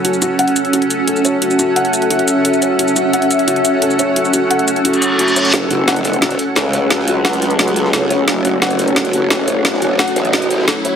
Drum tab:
HH |x-x-xxxxxxx-x-x-|x-x-xxxxxxx-x-x-|x-x-xxxxxxx-x-x-|x-x-xxxxxxx-x-xx|
SH |-xx---x---x--xx-|-xx---x---x--xx-|-xx---x---x--xx-|-xx---x--xx--xx-|
SD |----------------|----------------|----------------|----------------|

HH |x-x-xxxxxxx-x-x-|x-x-xxxxxxx-x-x-|x-x-xxxxxxx-x-x-|x-x-xxxxxxx-x-x-|
SH |----------------|----------------|----------------|----------------|
SD |o---o-o-oo--o---|oo--o---o--oo---|o---o-o-oo--o---|oo--o---o--oo---|